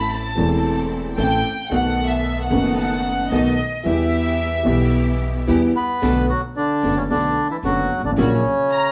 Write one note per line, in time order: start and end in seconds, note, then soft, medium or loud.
0.00 0.33 A1 loud
0.00 0.33 A1 medium
0.00 0.33 A2 medium
0.00 0.32 E3 medium
0.00 0.33 A3 medium
0.00 0.33 C4 medium
0.00 0.34 C4 medium
0.00 0.33 E4 medium
0.00 0.33 A4 medium
0.00 0.35 A4 medium
0.00 0.11 B5 medium
0.12 0.65 A5 medium
0.35 1.13 E1 medium
0.35 1.14 E1 medium
0.35 1.14 E2 medium
0.35 1.12 E3 medium
0.35 1.13 A3 medium
0.35 1.13 C4 medium
0.35 1.14 C4 medium
0.35 1.13 E4 medium
0.35 1.13 A4 loud
0.39 1.15 A4 medium
1.17 1.40 A1 medium
1.17 1.40 A2 medium
1.17 1.40 E3 medium
1.17 1.40 A3 medium
1.17 1.40 C4 medium
1.17 1.40 E4 medium
1.17 1.40 A4 medium
1.17 1.67 G5 loud
1.69 2.48 B1 loud
1.69 2.48 B1 medium
1.69 2.48 B2 medium
1.69 2.47 D#3 medium
1.69 2.47 A3 medium
1.69 2.47 B3 medium
1.69 2.48 B3 medium
1.69 2.48 A4 medium
1.69 2.07 F#5 medium
1.74 2.49 F#4 medium
2.07 2.43 E5 medium
2.42 2.76 F#5 medium
2.50 3.27 F#1 medium
2.50 3.28 F#1 medium
2.50 3.28 F#2 medium
2.50 3.27 D#3 medium
2.50 3.28 A3 medium
2.50 3.28 B3 medium
2.50 3.28 D#4 medium
2.50 3.28 A4 loud
2.54 3.29 F#4 medium
2.79 3.28 F#5 loud
3.31 3.54 B1 medium
3.31 3.55 B1 medium
3.31 3.54 B2 medium
3.31 3.54 D#3 medium
3.31 3.54 A3 medium
3.31 3.54 B3 medium
3.31 3.54 D#4 medium
3.31 3.54 F#4 medium
3.31 3.54 A4 medium
3.31 3.82 D#5 medium
3.84 4.62 E2 medium
3.84 4.63 E2 loud
3.84 3.85 E3 medium
3.84 4.62 E3 medium
3.84 4.62 G3 medium
3.84 4.62 B3 medium
3.84 4.63 B3 medium
3.84 4.62 E4 medium
3.84 4.62 G4 medium
3.84 4.63 G4 medium
3.84 5.44 E5 loud
4.63 5.43 B1 medium
4.63 5.44 B1 medium
4.63 5.43 B2 medium
4.63 5.42 E3 medium
4.63 5.43 G3 medium
4.63 5.43 B3 medium
4.63 5.44 B3 medium
4.63 5.43 E4 medium
4.63 5.44 G4 loud
4.68 5.44 G4 medium
5.47 5.71 E2 medium
5.47 5.71 E3 medium
5.47 5.71 G3 medium
5.47 5.71 B3 medium
5.47 5.71 E4 medium
5.47 5.71 G4 medium
5.75 6.31 B3 medium
5.75 6.26 B4 medium
6.02 6.25 B1 medium
6.02 6.25 B1 loud
6.02 6.25 B2 medium
6.02 6.25 D3 medium
6.02 6.25 A3 medium
6.02 6.25 B3 medium
6.02 6.25 D4 medium
6.02 6.25 F#4 medium
6.02 6.25 A4 medium
6.29 6.42 F#3 medium
6.29 6.41 F#4 medium
6.56 6.94 D3 medium
6.56 6.98 D4 loud
6.83 7.06 F#1 medium
6.83 7.06 F#2 medium
6.83 7.06 D3 medium
6.83 7.06 A3 soft
6.83 7.06 B3 medium
6.83 7.06 B3 soft
6.83 7.06 D4 medium
6.83 7.06 F#4 medium
6.83 7.06 A4 medium
6.97 7.03 C#3 medium
6.97 7.03 C#4 medium
7.10 7.33 B1 medium
7.10 7.33 B2 medium
7.10 7.33 D3 soft
7.10 7.48 D3 medium
7.10 7.33 A3 soft
7.10 7.33 B3 soft
7.10 7.48 D4 loud
7.10 7.33 D4 soft
7.10 7.33 F#4 medium
7.10 7.33 A4 medium
7.51 7.57 E3 medium
7.51 7.57 E4 medium
7.63 7.86 F#1 medium
7.63 7.87 F#1 medium
7.63 7.87 F#2 medium
7.63 7.87 D3 soft
7.63 8.02 F#3 medium
7.63 7.87 A3 soft
7.63 7.86 B3 soft
7.63 7.87 B3 soft
7.63 7.86 D4 medium
7.63 8.02 F#4 medium
7.63 7.87 F#4 medium
7.63 7.87 A4 medium
7.97 8.04 G1 medium
7.97 8.05 G1 medium
8.04 8.11 G#1 medium
8.04 8.11 D3 medium
8.04 8.11 D4 medium
8.11 8.18 A1 medium
8.17 8.40 A#1 medium
8.17 8.41 A#1 loud
8.17 8.40 A#2 medium
8.17 8.40 C#3 medium
8.17 8.92 C#3 medium
8.17 8.40 F#3 medium
8.17 8.40 A#3 medium
8.17 8.40 C#4 medium
8.17 8.92 C#4 medium
8.17 8.40 F#4 medium
8.72 8.92 A#5 loud